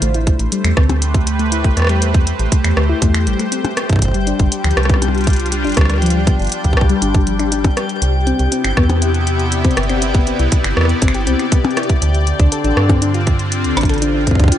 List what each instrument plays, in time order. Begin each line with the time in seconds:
Already playing: analog synth pad D4 C5
0.02 fm bass A1, analog synth pad A3, synth pluck A3, synth texture G4, closed hi-hat
0.14 synth pluck E4, closed hi-hat
0.25 synth pluck A3, analog synth pad G4, kick, closed hi-hat
0.39 fm bass A1, synth pluck A3, closed hi-hat
0.52 synth pluck G3, closed hi-hat
0.57 analog synth pad B4
0.64 fm bass E2, synth pluck A3, finger snap, closed hi-hat
0.77 fm bass D2, synth pluck C4, kick, cross-stick
0.90 closed hi-hat, percussion blips
1.02 closed hi-hat
1.14 kick, closed hi-hat
1.27 closed hi-hat
1.39 synth pluck A3, closed hi-hat
1.52 synth pluck E4, closed hi-hat
1.64 fm bass A1, synth pluck A3, kick, closed hi-hat
1.77 fm bass E2, synth pluck A3, cross-stick, closed hi-hat
1.79 cross-stick
1.82 cross-stick
1.84 cross-stick
1.87 synth pluck G3, finger snap, cross-stick, closed hi-hat
2.02 synth pluck A3, closed hi-hat
2.14 synth pluck C4, kick, closed hi-hat
2.27 closed hi-hat
2.39 fm bass A1, closed hi-hat
2.52 kick, closed hi-hat
2.64 fm bass E2, finger snap, closed hi-hat
2.77 fm bass D2, synth pluck A3, cross-stick
2.89 synth pluck E4
3.02 fm bass E2, synth pluck A3, kick, closed hi-hat
3.14 finger snap, closed hi-hat
3.27 fm bass A1, synth pluck G3, closed hi-hat
3.39 synth pluck A3, finger snap, closed hi-hat
3.52 synth pluck C4, closed hi-hat
3.65 closed hi-hat, percussion blips
3.77 cross-stick, closed hi-hat
3.89 kick, closed hi-hat
3.93 kick
3.96 kick
3.99 analog synth pad G3, kick, closed hi-hat
4.02 fm bass G1, kick
4.05 kick
4.08 kick
4.11 synth pluck G3, kick, closed hi-hat
4.27 synth pluck D4, analog synth pad D4, closed hi-hat
4.39 fm bass G1, synth pluck G3, kick, closed hi-hat
4.49 synth pluck G3, analog synth pad F4, closed hi-hat
4.64 fm bass D2, synth pluck F3, finger snap, closed hi-hat
4.71 closed hi-hat
4.77 fm bass C2, synth pluck G3, cross-stick, closed hi-hat
4.83 cross-stick, closed hi-hat
4.89 synth pluck B3, kick, closed hi-hat, percussion blips
4.94 cross-stick, percussion blips
5.02 closed hi-hat, percussion blips
5.08 percussion blips
5.15 closed hi-hat
5.18 closed hi-hat
5.21 closed hi-hat
5.24 kick, closed hi-hat
5.27 closed hi-hat
5.30 closed hi-hat
5.33 closed hi-hat
5.36 closed hi-hat
5.40 closed hi-hat
5.46 closed hi-hat
5.52 synth pluck G3, closed hi-hat
5.64 fm bass G1, synth pluck D4, closed hi-hat
5.67 closed hi-hat
5.70 closed hi-hat
5.72 closed hi-hat
5.75 cross-stick, closed hi-hat
5.77 fm bass D2, synth pluck G3, kick, closed hi-hat
5.81 cross-stick
5.85 cross-stick
5.90 synth pluck G3, finger snap, cross-stick, closed hi-hat
5.94 cross-stick
5.98 cross-stick
6.02 synth pluck F3, closed hi-hat
6.06 closed hi-hat
6.10 closed hi-hat
6.15 synth pluck G3
6.27 synth pluck B3, kick, closed hi-hat
6.40 fm bass G1, closed hi-hat
6.42 closed hi-hat
6.45 closed hi-hat
6.47 closed hi-hat
6.49 closed hi-hat
6.52 closed hi-hat
6.64 fm bass D2, kick, closed hi-hat
6.73 kick
6.77 fm bass C2, cross-stick
6.81 kick
6.89 synth pluck G3, closed hi-hat
7.02 fm bass G1, synth pluck D4, closed hi-hat
7.14 synth pluck G3, kick, closed hi-hat
7.27 synth pluck F3, closed hi-hat
7.39 synth pluck D4, finger snap, closed hi-hat
7.52 synth pluck D4, closed hi-hat
7.64 synth pluck G3, kick, closed hi-hat, percussion blips
7.77 cross-stick, closed hi-hat
7.89 closed hi-hat
8.02 fm bass C2, analog synth pad C3, closed hi-hat
8.18 analog synth pad B3
8.27 synth pluck C4, analog synth pad E4, closed hi-hat
8.39 fm bass C2, synth pluck G4, closed hi-hat
8.52 synth pluck C4, closed hi-hat
8.64 fm bass G1, synth pluck C4, finger snap, closed hi-hat
8.77 fm bass E2, synth pluck B3, kick, cross-stick
8.87 synth pluck C4, analog synth pad D5, closed hi-hat, percussion blips
9.02 synth pluck E4, closed hi-hat
9.14 closed hi-hat
9.27 closed hi-hat
9.39 closed hi-hat
9.52 closed hi-hat
9.64 fm bass C2, synth pluck C4, kick, closed hi-hat
9.71 closed hi-hat
9.77 fm bass G1, synth pluck G4, cross-stick, closed hi-hat
9.83 closed hi-hat
9.89 synth pluck C4, finger snap, closed hi-hat
10.02 synth pluck C4, closed hi-hat
10.14 synth pluck B3, kick, closed hi-hat
10.27 synth pluck C4, closed hi-hat
10.39 fm bass C2, synth pluck E4, closed hi-hat
10.52 kick, closed hi-hat
10.64 fm bass G1, finger snap, closed hi-hat
10.77 fm bass E2, cross-stick
10.81 cross-stick
10.85 cross-stick
10.89 closed hi-hat
11.02 fm bass G1, synth pluck C4, kick, closed hi-hat
11.08 finger snap
11.14 synth pluck G4, closed hi-hat
11.27 fm bass C2, synth pluck C4, closed hi-hat
11.39 synth pluck C4, finger snap, closed hi-hat
11.52 synth pluck B3, kick, closed hi-hat
11.64 synth pluck C4, closed hi-hat, percussion blips
11.71 closed hi-hat
11.77 synth pluck E4, cross-stick, closed hi-hat
11.83 closed hi-hat
11.89 kick, closed hi-hat
12.02 fm bass D2, analog synth pad D3, closed hi-hat
12.12 analog synth pad C4, closed hi-hat
12.27 closed hi-hat
12.40 fm bass D2, synth pluck D4, kick, closed hi-hat
12.44 analog synth pad F4
12.52 synth pluck A4, closed hi-hat
12.64 fm bass A1, synth pluck D4, closed hi-hat
12.77 fm bass G2, synth pluck D4, cross-stick
12.89 synth pluck C4, kick, closed hi-hat, percussion blips
13.02 synth pluck D4, closed hi-hat
13.14 synth pluck F4, closed hi-hat
13.27 kick, closed hi-hat
13.39 closed hi-hat
13.52 closed hi-hat
13.64 fm bass D2, closed hi-hat
13.77 fm bass A1, synth pluck D4, cross-stick, closed hi-hat
13.81 kick, closed hi-hat
13.85 closed hi-hat
13.89 synth pluck A4, finger snap, closed hi-hat
13.94 closed hi-hat
13.98 closed hi-hat
14.02 synth pluck D4, closed hi-hat
14.15 synth pluck D4
14.27 synth pluck C4, kick, closed hi-hat
14.31 kick
14.35 kick
14.40 fm bass D2, synth pluck D4, kick, closed hi-hat
14.44 kick
14.48 kick
14.52 synth pluck F4, closed hi-hat